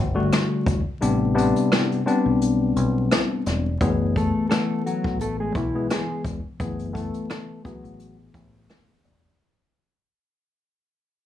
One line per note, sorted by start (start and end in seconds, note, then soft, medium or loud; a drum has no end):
0.00 0.29 G1 medium
0.15 0.79 D3 loud
0.15 0.79 G3 medium
0.15 0.79 A3 medium
0.15 0.80 F#4 loud
0.32 cross-stick medium
0.32 snare loud
0.32 closed hi-hat loud
0.66 0.84 E1 medium
0.66 kick loud
0.66 closed hi-hat medium
1.01 1.52 A1 loud
1.01 1.33 C3 loud
1.01 1.34 G3 medium
1.01 1.34 B3 medium
1.01 1.34 D4 loud
1.01 closed hi-hat medium
1.34 2.00 C3 medium
1.34 2.00 G3 medium
1.34 2.01 B3 medium
1.34 2.01 D4 loud
1.34 closed hi-hat medium
1.56 closed hi-hat medium
1.72 cross-stick loud
1.72 snare loud
1.72 closed hi-hat medium
1.92 closed hi-hat medium
2.06 3.68 G3 medium
2.06 3.68 B3 medium
2.06 3.68 C4 medium
2.06 3.68 D4 loud
2.06 closed hi-hat medium
2.26 2.72 B1 medium
2.42 closed hi-hat loud
2.76 3.08 B1 medium
2.76 closed hi-hat medium
3.11 cross-stick medium
3.11 snare loud
3.11 closed hi-hat loud
3.46 3.78 E1 loud
3.46 snare soft
3.46 closed hi-hat medium
3.81 4.31 F#1 loud
3.81 4.46 E3 medium
3.81 4.46 A3 medium
3.81 4.46 B3 medium
3.81 4.46 G#4 loud
3.81 kick loud
3.81 closed hi-hat medium
4.16 4.49 A3 medium
4.16 4.48 A4 medium
4.16 kick medium
4.16 closed hi-hat medium
4.49 5.64 E3 medium
4.49 4.82 A3 medium
4.49 5.64 A3 medium
4.49 5.64 B3 medium
4.49 4.81 A4 medium
4.49 5.64 A4 loud
4.49 cross-stick loud
4.49 snare loud
4.49 closed hi-hat medium
4.86 5.18 F#3 medium
4.86 5.17 F#4 medium
4.86 closed hi-hat medium
5.04 5.51 A1 medium
5.04 kick medium
5.21 5.38 A3 medium
5.21 5.38 A4 medium
5.21 closed hi-hat loud
5.40 5.55 G#3 medium
5.40 5.54 G#4 medium
5.55 5.87 B1 medium
5.55 5.88 E3 medium
5.55 5.87 E4 medium
5.55 kick loud
5.55 closed hi-hat medium
5.75 6.38 E3 medium
5.75 6.38 G#3 medium
5.75 6.38 B3 medium
5.75 6.39 G#4 loud
5.90 6.22 G#3 medium
5.90 6.22 G#4 medium
5.90 cross-stick medium
5.90 snare loud
5.90 closed hi-hat loud
6.24 6.42 E1 medium
6.24 kick loud
6.24 closed hi-hat medium
6.60 7.10 F#1 loud
6.60 6.92 E3 medium
6.60 6.92 A3 medium
6.60 6.93 B3 medium
6.60 6.93 G#4 loud
6.60 kick loud
6.60 closed hi-hat medium
6.79 closed hi-hat medium
6.93 7.59 E3 medium
6.93 7.59 A3 medium
6.93 7.27 A3 medium
6.93 7.59 B3 medium
6.93 7.59 A4 loud
6.93 7.26 A4 medium
6.93 kick medium
6.93 closed hi-hat medium
7.14 closed hi-hat medium
7.30 7.62 A3 medium
7.30 7.62 A4 medium
7.30 cross-stick medium
7.30 snare loud
7.30 closed hi-hat medium
7.64 9.26 E3 medium
7.64 8.16 F#3 medium
7.64 9.26 A3 medium
7.64 9.26 B3 medium
7.64 8.16 F#4 medium
7.64 9.26 G#4 loud
7.64 kick medium
7.64 closed hi-hat medium
7.84 8.31 A1 medium
7.84 closed hi-hat medium
8.00 closed hi-hat loud
8.34 8.66 A1 medium
8.34 kick medium
8.34 closed hi-hat medium
8.70 cross-stick medium
8.70 snare loud
8.70 closed hi-hat loud
9.04 9.36 E1 medium
9.04 closed hi-hat medium